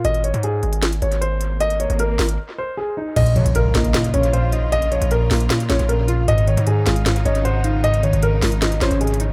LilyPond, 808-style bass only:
\new Staff \with { instrumentName = "808-style bass" } { \clef bass \time 4/4 \key bes \minor \tempo 4 = 154 aes,,8. aes,8. aes,,4 aes,,4.~ | aes,,8. aes,,8. aes,,8 r2 | bes,,8 des16 bes,,8 c,16 bes,,8 r8 bes,,4.~ | bes,,8. bes,,8. bes,,8 r8 bes,,16 bes,,4~ bes,,16 |
aes,,8. aes,8. aes,,4 aes,,4.~ | aes,,8. aes,,8. aes,,4 aes,,16 aes,,4~ aes,,16 | }